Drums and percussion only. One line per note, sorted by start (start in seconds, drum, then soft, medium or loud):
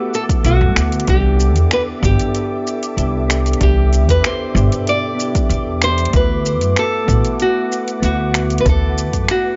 0.14 shaker medium
0.29 kick loud
0.29 closed hi-hat soft
0.29 shaker soft
0.45 closed hi-hat medium
0.45 shaker soft
0.76 finger snap medium
0.76 closed hi-hat soft
0.76 shaker medium
0.92 closed hi-hat soft
0.92 shaker soft
1.00 closed hi-hat medium
1.07 kick loud
1.07 closed hi-hat medium
1.07 shaker soft
1.40 shaker medium
1.56 closed hi-hat soft
1.56 shaker soft
1.71 finger snap medium
1.71 closed hi-hat medium
1.71 shaker soft
2.03 kick loud
2.03 shaker medium
2.19 closed hi-hat soft
2.19 shaker soft
2.35 closed hi-hat medium
2.35 shaker soft
2.67 shaker medium
2.83 closed hi-hat soft
2.83 shaker soft
2.98 closed hi-hat medium
2.98 shaker soft
3.30 finger snap medium
3.30 closed hi-hat soft
3.30 shaker medium
3.46 closed hi-hat soft
3.46 shaker soft
3.53 closed hi-hat medium
3.61 kick loud
3.61 closed hi-hat medium
3.61 shaker soft
3.93 closed hi-hat soft
3.93 shaker medium
4.09 kick medium
4.09 closed hi-hat soft
4.09 shaker soft
4.24 finger snap medium
4.24 closed hi-hat medium
4.24 shaker soft
4.57 shaker medium
4.72 closed hi-hat soft
4.72 shaker soft
4.87 closed hi-hat soft
4.87 shaker soft
5.20 shaker medium
5.35 kick loud
5.35 closed hi-hat soft
5.35 shaker soft
5.50 closed hi-hat medium
5.50 shaker soft
5.82 finger snap medium
5.82 closed hi-hat soft
5.82 shaker medium
5.98 closed hi-hat soft
5.98 shaker soft
6.05 closed hi-hat medium
6.13 kick loud
6.13 closed hi-hat medium
6.13 shaker soft
6.46 shaker medium
6.61 closed hi-hat soft
6.61 shaker soft
6.76 finger snap medium
6.76 closed hi-hat medium
6.76 shaker soft
7.08 kick loud
7.08 shaker medium
7.25 closed hi-hat soft
7.25 shaker soft
7.40 closed hi-hat soft
7.40 shaker soft
7.72 shaker medium
7.88 closed hi-hat soft
7.88 shaker soft
8.03 closed hi-hat medium
8.03 shaker soft
8.34 finger snap medium
8.34 closed hi-hat soft
8.34 shaker medium
8.50 closed hi-hat soft
8.50 shaker soft
8.58 closed hi-hat medium
8.66 kick loud
8.66 closed hi-hat medium
8.66 shaker soft
8.98 shaker medium
9.13 kick medium
9.13 closed hi-hat soft
9.13 shaker soft
9.28 finger snap medium
9.28 closed hi-hat medium
9.28 shaker soft